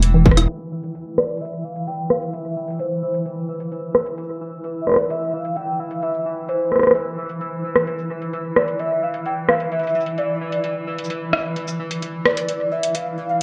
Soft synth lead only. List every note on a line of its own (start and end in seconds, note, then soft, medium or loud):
1.18 1.43 D5 loud
1.41 1.66 E5 loud
1.64 1.89 F5 loud
1.87 2.12 G5 loud
2.10 2.35 F5 loud
2.33 2.81 E5 loud
2.80 3.72 C5 medium
4.81 4.89 E5 medium
4.87 5.12 D5 medium
5.10 5.35 E5 loud
5.33 5.58 F5 loud
5.56 5.81 G5 loud
5.79 6.04 F5 loud
6.03 6.50 E5 loud
6.49 7.41 C5 medium
8.56 8.81 D5 medium
8.80 9.04 E5 loud
9.03 9.27 F5 loud
9.26 9.48 G5 loud
9.49 9.70 F5 loud
9.72 10.20 E5 loud
10.18 11.10 D5 medium
12.26 12.73 D5 loud
12.72 12.97 E5 medium
12.95 13.29 F5 loud
13.30 13.35 F5 medium